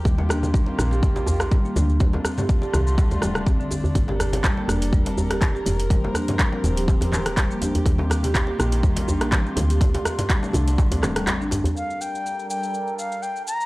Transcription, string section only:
0.00 1.96 G4 medium
0.05 1.99 D#3 medium
0.05 1.98 A#3 medium
0.05 1.99 F4 medium
2.00 3.94 D3 medium
2.00 3.94 A3 medium
2.00 5.87 D4 medium
2.00 3.94 F4 medium
3.95 5.88 G3 medium
3.95 5.88 A4 medium
3.95 7.82 A#4 medium
5.91 7.84 F3 medium
5.91 7.84 C4 medium
5.91 9.77 G4 medium
7.86 9.79 D#3 medium
7.86 9.79 A#3 medium
7.86 11.72 F4 medium
9.81 11.74 D3 medium
9.81 11.74 A3 medium
9.81 11.74 D4 medium
11.76 13.66 G3 medium
11.76 13.66 D4 medium
11.76 13.66 A4 medium
11.76 13.66 A#4 medium

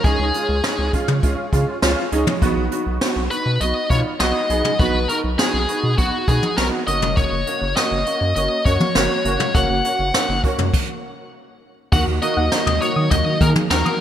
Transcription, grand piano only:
0.04 0.25 G#3 medium
0.04 0.25 C#4 medium
0.04 0.25 D#4 loud
0.34 0.55 G#3 medium
0.34 0.55 C#4 medium
0.34 0.55 F4 medium
0.64 0.84 G#3 medium
0.64 0.84 C#4 medium
0.64 0.84 D#4 medium
0.93 1.14 G#3 medium
0.93 1.14 C#4 medium
0.93 1.14 F4 medium
1.23 1.44 G#3 medium
1.23 1.44 C#4 medium
1.23 1.44 F4 medium
1.53 1.73 G#3 medium
1.53 1.73 C#4 medium
1.53 1.73 F4 medium
1.83 2.03 G#3 loud
1.83 2.03 C#4 loud
1.83 2.03 F4 loud
2.12 2.33 G#3 loud
2.12 2.33 C#4 loud
2.12 2.33 D#4 loud
2.42 2.62 B3 loud
2.42 2.62 D#4 loud
2.42 2.62 F#4 loud
2.72 2.92 B3 medium
2.72 2.92 D#4 medium
2.72 2.92 F#4 medium
3.01 3.22 B3 medium
3.01 3.22 D#4 medium
3.01 3.22 F#4 medium
3.31 3.52 B3 medium
3.31 3.52 D#4 medium
3.31 3.52 F#4 medium
3.61 3.81 B3 medium
3.61 3.81 D#4 medium
3.61 3.81 F#4 medium
3.90 4.11 B3 medium
3.90 4.11 D#4 medium
3.90 4.11 F4 medium
4.20 4.41 B3 medium
4.20 4.41 D#4 medium
4.20 4.41 F#4 loud
4.50 4.70 B3 medium
4.50 4.70 D#4 medium
4.50 4.70 G#4 loud
4.80 5.00 B3 medium
4.80 5.00 D#4 medium
4.80 5.00 F#4 loud
5.09 5.30 B3 medium
5.09 5.30 D#4 medium
5.09 5.30 F#4 medium
5.39 5.59 B3 medium
5.39 5.59 D#4 medium
5.39 5.59 F#4 medium
5.69 5.89 B3 medium
5.69 5.89 D#4 medium
5.69 5.89 F#4 medium
5.98 6.19 B3 medium
5.98 6.19 D#4 medium
5.98 6.19 F#4 medium
6.28 6.49 B3 medium
6.28 6.49 D#4 medium
6.28 6.49 F#4 medium
6.58 6.78 B3 medium
6.58 6.78 D#4 medium
6.58 6.78 F#4 loud
6.87 7.35 A#3 medium
6.87 7.35 C#4 medium
6.87 7.35 F#4 medium
7.47 7.67 A#3 medium
7.47 7.67 C#4 medium
7.47 7.67 F#4 medium
7.76 7.97 A#3 medium
7.76 7.97 C#4 medium
7.76 7.97 F#4 medium
8.06 8.27 A#3 medium
8.06 8.27 C#4 medium
8.06 8.27 F#4 medium
8.36 8.56 A#3 medium
8.36 8.56 C#4 medium
8.36 8.56 F#4 medium
8.66 8.86 A#3 medium
8.66 8.86 C#4 medium
8.66 8.86 F#4 medium
8.95 9.16 A#3 loud
8.95 9.16 C#4 medium
8.95 9.16 F#4 loud
9.25 9.46 A#3 medium
9.25 9.46 C#4 medium
9.25 9.46 F#4 loud
9.55 9.75 A#3 medium
9.55 9.75 C#4 medium
9.55 9.75 F#4 loud
9.84 10.05 A#3 medium
9.84 10.05 C#4 medium
9.84 10.05 F#4 medium
10.14 10.35 A#3 medium
10.14 10.35 C#4 medium
10.14 10.35 D#4 medium
10.44 10.64 A#3 medium
10.44 10.64 C#4 medium
10.44 10.64 F#4 medium
11.92 12.13 A#3 medium
11.92 12.13 D#4 medium
11.92 12.13 F#4 loud
12.22 12.43 A#3 medium
12.22 12.43 D#4 medium
12.22 12.43 F#4 loud
12.52 12.72 A#3 medium
12.52 12.72 D#4 medium
12.52 12.72 F#4 medium
12.81 13.02 A#3 medium
12.81 13.02 D#4 medium
12.81 13.02 F#4 medium
13.11 13.32 A#3 medium
13.11 13.32 D#4 medium
13.11 13.32 F#4 medium
13.41 13.61 A#3 medium
13.41 13.61 D#4 medium
13.41 13.61 G#4 medium
13.71 13.91 A#3 medium
13.71 13.91 D#4 medium
13.71 13.91 F#4 loud

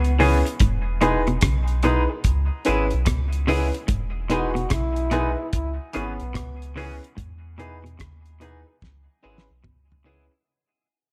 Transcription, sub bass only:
0.00 0.43 C#2 loud
0.61 1.39 E1 loud
1.43 2.07 B1 medium
2.25 2.50 C#2 loud
2.68 2.92 G#1 medium
2.94 3.07 B1 loud
3.08 3.71 C#2 medium
3.90 4.68 E1 medium
4.72 5.36 B1 medium
5.54 5.79 C#2 medium
5.96 6.20 G#1 medium
6.22 6.35 B1 loud
6.36 7.00 C#2 loud
7.19 7.97 E2 loud
8.01 8.65 D#2 medium
8.83 9.08 C#2 medium
9.25 9.49 G#1 medium
9.50 9.64 B1 medium
9.65 10.29 C#2 medium

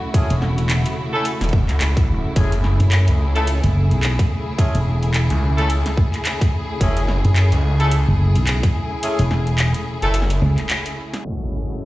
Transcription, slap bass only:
0.30 0.83 E1 medium
2.80 3.05 F#2 medium
3.64 3.89 F#1 medium
3.92 4.17 B1 loud
4.75 5.28 E1 medium
7.25 7.50 F#2 medium
8.08 8.33 F#1 loud
8.36 8.61 B1 loud
9.19 9.72 E1 medium
10.42 10.55 C#2 medium

